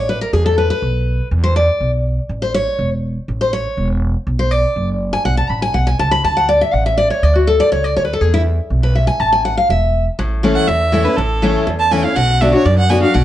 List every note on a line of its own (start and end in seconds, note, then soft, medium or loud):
0.00 0.20 A1 medium
0.09 0.21 B4 medium
0.21 0.33 A#4 medium
0.33 0.70 E2 medium
0.33 0.45 G#4 medium
0.46 0.57 A4 loud
0.58 0.69 B4 medium
0.70 1.27 B4 medium
0.82 1.19 B1 medium
1.31 1.68 E2 loud
1.44 1.55 C5 medium
1.56 1.91 D5 loud
1.81 2.17 B1 medium
2.29 2.66 A1 medium
2.42 2.54 C5 loud
2.54 2.89 C#5 loud
2.79 3.16 E1 medium
3.28 3.65 A1 medium
3.41 3.53 C5 medium
3.53 3.88 C#5 loud
3.77 4.14 E1 medium
4.27 4.63 B1 medium
4.39 4.51 C5 loud
4.51 4.88 D5 medium
4.76 5.13 F#1 medium
5.13 5.25 G#5 loud
5.25 5.44 B1 medium
5.25 5.37 F#5 medium
5.37 5.50 A5 medium
5.50 5.71 A1 medium
5.50 5.62 B5 loud
5.62 5.74 G#5 loud
5.74 5.96 B1 medium
5.74 5.87 F#5 medium
5.87 5.99 G#5 loud
5.99 6.20 C#2 medium
5.99 6.11 A5 loud
6.11 6.23 B5 loud
6.24 6.61 D2 loud
6.24 6.36 A5 medium
6.37 6.48 F#5 loud
6.49 6.61 D5 medium
6.61 6.74 E5 medium
6.73 7.10 A1 medium
6.73 6.86 F#5 loud
6.86 6.97 E5 medium
6.98 7.10 D5 medium
7.10 7.23 C#5 medium
7.23 7.59 D2 medium
7.23 7.35 D5 loud
7.36 7.47 F#4 medium
7.47 7.60 A4 medium
7.60 7.71 D5 loud
7.72 7.93 C#2 medium
7.72 7.84 C#5 loud
7.84 7.96 D5 loud
7.96 8.18 D2 medium
7.96 8.04 C#5 medium
8.05 8.13 B4 medium
8.13 8.21 A4 medium
8.21 8.58 E2 loud
8.21 8.33 G#4 medium
8.34 8.41 E4 loud
8.70 9.07 B1 medium
8.83 8.95 B4 medium
8.95 9.07 E5 medium
9.07 9.20 G#5 loud
9.20 9.57 A1 medium
9.20 9.32 A5 loud
9.33 9.44 G#5 loud
9.45 9.57 F#5 medium
9.57 9.69 F5 loud
9.69 10.06 E1 medium
9.69 10.04 E5 medium
10.19 10.56 A1 medium
10.19 10.66 A2 loud
10.43 10.67 E3 loud
10.43 10.67 A3 medium
10.43 10.67 C#4 loud
10.43 10.68 E4 loud
10.56 10.69 F#5 loud
10.68 11.05 E2 medium
10.68 11.15 E2 loud
10.68 11.07 E5 medium
10.92 11.05 E3 medium
10.92 11.05 A3 medium
10.92 11.05 C#4 medium
10.92 11.04 E4 loud
11.05 11.18 C#4 soft
11.05 11.17 E4 medium
11.05 11.18 B4 medium
11.17 11.54 A1 medium
11.17 11.65 A2 medium
11.17 11.67 A4 medium
11.42 11.66 E3 medium
11.42 11.66 A3 medium
11.42 11.66 C#4 loud
11.42 11.67 E4 loud
11.67 12.14 E2 loud
11.67 12.04 E2 medium
11.80 11.93 A5 loud
11.91 12.04 E3 medium
11.91 12.04 A3 medium
11.91 12.04 C#4 loud
11.91 12.03 E4 loud
11.91 12.06 G#5 medium
12.04 12.17 C#4 soft
12.04 12.16 E4 medium
12.04 12.17 F5 medium
12.16 12.53 B1 medium
12.16 12.63 B2 medium
12.16 12.43 F#5 loud
12.41 12.53 D3 medium
12.41 12.53 B3 medium
12.41 12.54 D4 loud
12.41 12.52 F#4 loud
12.41 12.53 E5 medium
12.53 12.66 D4 medium
12.53 12.65 F#4 medium
12.53 12.67 C#5 loud
12.65 13.02 F#2 medium
12.65 13.13 F#2 loud
12.65 12.78 D5 medium
12.78 12.91 F#5 loud
12.89 13.02 D3 medium
12.89 13.02 B3 loud
12.89 13.02 D4 medium
12.89 13.01 F#4 loud
12.89 13.02 G#5 medium
13.02 13.15 D4 soft
13.02 13.14 F#4 medium
13.02 13.15 F5 loud
13.14 13.24 B1 loud
13.14 13.24 B2 loud
13.14 13.24 F#5 medium